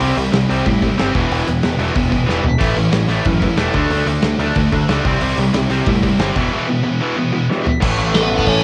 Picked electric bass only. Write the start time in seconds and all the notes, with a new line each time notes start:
0.00 C2
0.17 C2
0.33 C2
0.50 C2
0.66 A2
0.99 G1
1.15 E1
1.31 E1
1.49 E1
1.64 E1
1.79 E1
1.96 E1
2.12 E1
2.29 E1
2.44 E1
2.61 A1
2.77 A1
2.92 A1
3.08 A1
3.26 F#2
3.57 E1
3.74 D2
3.90 D2
4.06 D2
4.23 D2
4.39 D2
4.56 D2
4.73 D2
4.89 C#2
5.05 C2
5.21 C2
5.38 C2
5.54 C2
5.69 C2
5.87 A2
6.19 G1
6.36 E1
7.82 A1
7.98 A1
8.14 A1
8.30 A1
8.47 A1